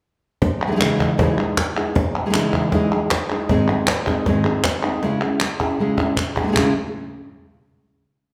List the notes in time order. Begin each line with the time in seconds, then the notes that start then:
0.42 muted nylon-string guitar stroke, cajon bass
0.67 E3 G#3 D#4 E4 G#4
0.72 E3 G#3 D#4 E4 G#4
0.76 E3 G#3 D#4 E4 G#4
0.81 C#3 E3 G#3 D#4 E4 G#4, cajon slap, clap
1.00 cajon bass, clap
1.18 C#3 E3 G#3 D#4 E4 G#4, cajon bass
1.38 G#3 D#4 E4 G#4
1.57 muted nylon-string guitar stroke, cajon bass, cajon slap, clap
1.77 G#3 D#4 E4 G#4, clap
1.95 muted nylon-string guitar stroke, cajon bass
2.15 cajon slap, clap
2.26 E3 G#3 D#4 E4 G#4
2.30 E3 G#3 D#4 E4 G#4, cajon slap, clap
2.35 C#3 E3 G#3 D#4 E4 G#4
2.53 cajon bass, clap
2.72 C#3 E3 G#3 D#4 E4 G#4, cajon bass, cajon slap
2.92 G#3 D#4 E4 G#4, cajon slap
3.11 muted nylon-string guitar stroke, cajon bass, cajon slap, clap
3.30 G#3 D#4 E4 G#4, clap
3.49 G#2 D#3 G#3 C4 D#4 G#4, cajon bass
3.69 G#3 C4 D#4 G#4
3.87 muted nylon-string guitar stroke, cajon slap, clap
4.06 G#3 C4 D#4 G#4, cajon bass, clap
4.26 G#2 D#3 G#3 C4 D#4 G#4, cajon bass, cajon slap
4.44 G#3 C4 D#4 G#4, cajon slap, clap
4.64 muted nylon-string guitar stroke, cajon bass, cajon slap, clap
4.83 G#3 C4 D#4 G#4, clap
5.02 C#3 G#3 C#4 E4 G#4, cajon slap
5.21 C#4 E4 G#4
5.40 muted nylon-string guitar stroke, cajon slap, clap
5.60 C#4 E4 G#4, cajon bass, clap
5.79 C#3 G#3 C#4 E4 G#4
5.98 C#4 E4 G#4, cajon bass, clap
6.17 muted nylon-string guitar stroke, cajon bass, clap
6.36 C#4 E4 G#4, cajon bass, clap
6.43 G#3 C#4 E4 G#4
6.48 G#3 C#4 E4 G#4
6.52 G#3 C#4 E4 G#4, cajon bass
6.56 C#3 G#3 C#4 E4 G#4, clap